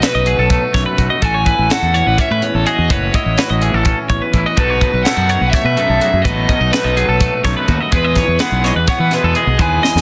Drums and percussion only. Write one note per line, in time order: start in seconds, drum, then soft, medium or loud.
0.02 snare loud
0.02 closed hi-hat medium
0.26 closed hi-hat medium
0.50 kick loud
0.50 closed hi-hat medium
0.74 kick medium
0.74 snare soft
0.74 closed hi-hat medium
0.98 kick medium
0.98 closed hi-hat medium
1.22 kick loud
1.22 closed hi-hat loud
1.46 kick medium
1.46 closed hi-hat medium
1.70 snare loud
1.70 closed hi-hat loud
1.94 closed hi-hat medium
2.18 kick loud
2.18 closed hi-hat loud
2.42 closed hi-hat medium
2.66 closed hi-hat medium
2.90 kick loud
2.90 closed hi-hat medium
3.14 kick medium
3.14 closed hi-hat medium
3.38 snare loud
3.38 closed hi-hat medium
3.62 closed hi-hat medium
3.85 kick loud
3.85 closed hi-hat medium
4.10 kick medium
4.10 closed hi-hat medium
4.33 kick medium
4.33 closed hi-hat medium
4.57 kick loud
4.57 closed hi-hat medium
4.81 kick medium
4.81 closed hi-hat medium
5.05 snare loud
5.05 closed hi-hat medium
5.29 closed hi-hat medium
5.53 kick loud
5.53 snare soft
5.53 closed hi-hat loud
5.77 closed hi-hat medium
6.01 closed hi-hat medium
6.25 kick loud
6.25 closed hi-hat loud
6.49 kick medium
6.49 closed hi-hat medium
6.73 snare loud
6.73 closed hi-hat medium
6.97 closed hi-hat medium
7.20 kick loud
7.20 closed hi-hat loud
7.45 kick medium
7.45 snare soft
7.45 closed hi-hat medium
7.68 kick medium
7.68 closed hi-hat medium
7.92 kick loud
7.92 closed hi-hat loud
8.15 kick medium
8.15 snare soft
8.15 closed hi-hat medium
8.39 snare loud
8.39 closed hi-hat medium
8.64 snare soft
8.64 closed hi-hat medium
8.87 kick loud
8.87 snare soft
8.87 closed hi-hat medium
9.11 snare soft
9.11 closed hi-hat medium
9.35 closed hi-hat medium
9.59 kick loud
9.59 closed hi-hat loud
9.84 snare medium
9.97 snare medium